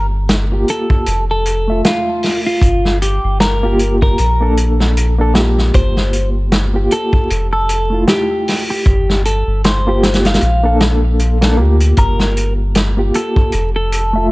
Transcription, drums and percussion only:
0.29 snare, closed hi-hat
0.68 closed hi-hat
0.90 kick
1.06 closed hi-hat
1.46 closed hi-hat
1.84 snare, closed hi-hat
2.23 snare, open hi-hat
2.62 kick, closed hi-hat
2.85 snare
3.02 closed hi-hat
3.40 snare, closed hi-hat
3.79 closed hi-hat
4.02 kick
4.18 closed hi-hat
4.57 closed hi-hat
4.80 snare
4.97 closed hi-hat
5.35 snare, closed hi-hat
5.58 snare
5.74 kick, closed hi-hat
5.97 snare
6.13 closed hi-hat
6.52 snare, closed hi-hat
6.91 closed hi-hat
7.13 kick
7.30 closed hi-hat
7.69 closed hi-hat
8.08 snare, closed hi-hat
8.48 snare, open hi-hat
8.86 kick, closed hi-hat
9.09 snare
9.25 closed hi-hat
9.64 snare, closed hi-hat
10.03 snare, closed hi-hat
10.14 snare, closed hi-hat
10.25 snare, closed hi-hat
10.34 snare, closed hi-hat
10.41 closed hi-hat
10.80 snare, closed hi-hat
11.19 closed hi-hat
11.42 snare, closed hi-hat
11.80 closed hi-hat
11.97 kick, closed hi-hat
12.19 snare
12.37 closed hi-hat
12.75 snare, closed hi-hat
13.14 closed hi-hat
13.36 kick
13.52 closed hi-hat
13.92 closed hi-hat

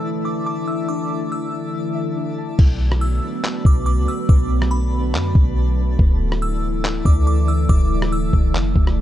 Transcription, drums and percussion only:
2.59 kick, crash
2.92 cross-stick
3.45 clap
3.65 kick
4.29 kick
4.62 cross-stick
5.15 clap
5.35 kick
5.99 kick
6.32 cross-stick
6.85 clap
7.05 kick
7.69 kick
8.02 cross-stick
8.33 kick
8.55 clap
8.76 kick
8.87 cross-stick

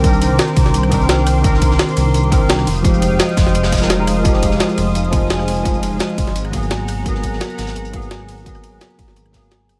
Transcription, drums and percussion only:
0.04 kick, closed hi-hat
0.13 closed hi-hat
0.22 closed hi-hat, ride, shaker
0.39 snare, closed hi-hat
0.48 shaker
0.56 kick, closed hi-hat, ride, shaker
0.66 snare
0.74 closed hi-hat
0.83 cross-stick, shaker
0.92 kick, closed hi-hat, ride, shaker
1.01 closed hi-hat
1.09 snare, closed hi-hat
1.26 cross-stick, closed hi-hat, open hi-hat, ride, shaker
1.44 kick, closed hi-hat
1.54 snare
1.62 kick, closed hi-hat, ride, shaker
1.71 snare
1.79 snare, closed hi-hat
1.89 closed hi-hat, shaker
1.97 closed hi-hat, ride, shaker
2.14 closed hi-hat
2.24 shaker
2.32 kick, closed hi-hat, ride, shaker
2.49 snare, closed hi-hat
2.58 cross-stick, snare
2.67 open hi-hat, ride, shaker
2.76 closed hi-hat
2.84 kick, closed hi-hat
2.94 closed hi-hat
3.02 closed hi-hat, ride, shaker
3.19 snare, closed hi-hat
3.29 shaker
3.37 kick, snare, closed hi-hat, ride, shaker
3.47 snare
3.54 closed hi-hat
3.63 cross-stick, snare, closed hi-hat, shaker
3.72 kick, snare, closed hi-hat, ride, shaker
3.77 snare, closed hi-hat
3.82 snare, closed hi-hat
3.89 snare, closed hi-hat
4.07 cross-stick, closed hi-hat, open hi-hat, ride, shaker
4.25 kick, closed hi-hat
4.34 snare
4.42 kick, closed hi-hat, ride, shaker
4.51 snare
4.60 snare, closed hi-hat
4.69 closed hi-hat, shaker
4.78 closed hi-hat, ride, shaker
4.95 closed hi-hat
5.04 shaker
5.13 kick, closed hi-hat, ride, shaker
5.30 snare, closed hi-hat
5.39 cross-stick, snare
5.48 open hi-hat, ride, shaker
5.57 closed hi-hat
5.65 kick, closed hi-hat
5.74 closed hi-hat
5.83 closed hi-hat, ride, shaker
5.99 snare, closed hi-hat
6.10 shaker
6.18 kick, closed hi-hat, ride, shaker
6.27 snare
6.36 closed hi-hat
6.45 cross-stick, shaker
6.53 kick, closed hi-hat, ride, shaker
6.63 closed hi-hat
6.70 snare, closed hi-hat
6.88 cross-stick, closed hi-hat, open hi-hat, ride, shaker
7.06 kick, closed hi-hat
7.15 snare
7.23 kick, closed hi-hat, ride, shaker
7.33 snare
7.40 snare, closed hi-hat
7.50 closed hi-hat, shaker
7.58 snare, closed hi-hat, ride, shaker
7.67 snare, closed hi-hat
7.75 closed hi-hat
7.85 closed hi-hat, shaker
7.93 kick, closed hi-hat, ride, shaker
8.02 closed hi-hat
8.11 snare, closed hi-hat
8.20 cross-stick
8.29 closed hi-hat, open hi-hat, ride, shaker
8.38 closed hi-hat
8.46 kick, closed hi-hat
8.55 cross-stick, closed hi-hat
8.63 closed hi-hat, ride, shaker
8.81 snare, closed hi-hat
8.90 shaker
8.99 kick, closed hi-hat, ride, shaker
9.08 snare
9.16 closed hi-hat
9.26 cross-stick, shaker
9.33 kick, snare, closed hi-hat, ride, shaker
9.43 closed hi-hat
9.51 snare, closed hi-hat
9.69 cross-stick, closed hi-hat, open hi-hat, ride, shaker

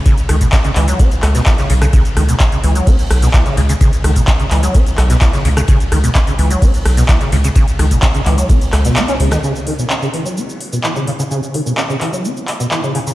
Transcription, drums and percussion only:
0.06 kick, closed hi-hat, ride, shaker
0.18 closed hi-hat, shaker
0.29 cross-stick, open hi-hat, ride
0.41 kick, closed hi-hat, ride, shaker
0.52 kick, snare, clap, closed hi-hat, ride, shaker
0.64 closed hi-hat, shaker
0.76 clap, open hi-hat, ride
0.88 closed hi-hat, shaker
0.99 kick, closed hi-hat, ride, shaker
1.11 closed hi-hat, ride, shaker
1.23 cross-stick, clap, open hi-hat, ride
1.35 snare, closed hi-hat, shaker
1.46 kick, snare, clap, closed hi-hat, ride, shaker
1.58 snare, closed hi-hat, shaker
1.70 open hi-hat, ride
1.82 cross-stick, closed hi-hat, shaker
1.93 kick, closed hi-hat, ride, shaker
2.05 closed hi-hat, shaker
2.17 cross-stick, open hi-hat, ride
2.29 closed hi-hat, shaker
2.40 kick, snare, clap, closed hi-hat, ride, shaker
2.52 closed hi-hat, shaker
2.64 open hi-hat, ride
2.75 closed hi-hat, shaker
2.87 kick, closed hi-hat, open hi-hat, shaker
2.99 closed hi-hat, shaker
3.10 cross-stick, snare, open hi-hat, ride
3.22 snare, closed hi-hat, shaker
3.34 kick, snare, clap, closed hi-hat, ride, shaker
3.46 snare, closed hi-hat, shaker
3.57 snare, open hi-hat, ride
3.69 closed hi-hat, ride, shaker
3.81 kick, closed hi-hat, ride, shaker
3.93 closed hi-hat, shaker
4.04 cross-stick, open hi-hat, ride
4.15 kick, closed hi-hat, ride, shaker
4.27 kick, snare, clap, closed hi-hat, ride, shaker
4.40 closed hi-hat, shaker
4.51 clap, open hi-hat, ride
4.63 closed hi-hat, shaker
4.75 kick, closed hi-hat, ride, shaker
4.86 closed hi-hat, ride, shaker
4.98 cross-stick, clap, open hi-hat, ride
5.10 snare, closed hi-hat, shaker
5.21 kick, snare, clap, closed hi-hat, ride, shaker
5.33 snare, closed hi-hat, shaker
5.45 open hi-hat, ride
5.57 cross-stick, closed hi-hat, shaker
5.68 kick, closed hi-hat, ride, shaker
5.80 closed hi-hat, shaker
5.92 cross-stick, open hi-hat, ride
6.04 closed hi-hat, shaker
6.15 kick, snare, clap, closed hi-hat, shaker
6.27 closed hi-hat, shaker
6.39 open hi-hat, ride
6.51 closed hi-hat, shaker
6.62 kick, closed hi-hat, open hi-hat, shaker
6.74 closed hi-hat, shaker
6.85 cross-stick, snare, open hi-hat, ride
6.97 snare, closed hi-hat, shaker
7.09 kick, snare, clap, closed hi-hat, ride, shaker
7.21 snare, closed hi-hat, shaker
7.32 snare, open hi-hat, ride
7.44 closed hi-hat, ride, shaker
7.55 kick, closed hi-hat, ride, shaker
7.68 closed hi-hat, shaker
7.79 cross-stick, open hi-hat, ride
7.91 kick, closed hi-hat, ride, shaker
8.02 kick, snare, clap, closed hi-hat, ride, shaker
8.15 closed hi-hat, shaker
8.26 clap, open hi-hat, ride
8.38 closed hi-hat, shaker
8.49 kick, closed hi-hat, open hi-hat, shaker
8.61 closed hi-hat, shaker
8.73 cross-stick, snare, clap, open hi-hat, ride
8.85 snare, closed hi-hat, shaker
8.96 snare, clap, closed hi-hat, ride, shaker
9.08 closed hi-hat, shaker
9.20 open hi-hat, ride
9.31 cross-stick, snare, closed hi-hat, ride, shaker
9.44 shaker
9.56 shaker
9.67 open hi-hat
9.79 shaker
9.90 clap, shaker
10.02 shaker
10.14 open hi-hat
10.26 shaker
10.37 shaker
10.49 shaker
10.61 open hi-hat
10.73 shaker
10.84 clap, shaker
10.96 shaker
11.07 open hi-hat
11.20 shaker
11.31 shaker
11.43 shaker
11.54 open hi-hat
11.67 shaker
11.77 clap, shaker
11.90 shaker
12.01 clap, open hi-hat
12.13 shaker
12.25 shaker
12.37 shaker
12.48 clap, open hi-hat
12.60 shaker
12.71 clap, shaker
12.84 shaker
12.95 open hi-hat
13.07 shaker

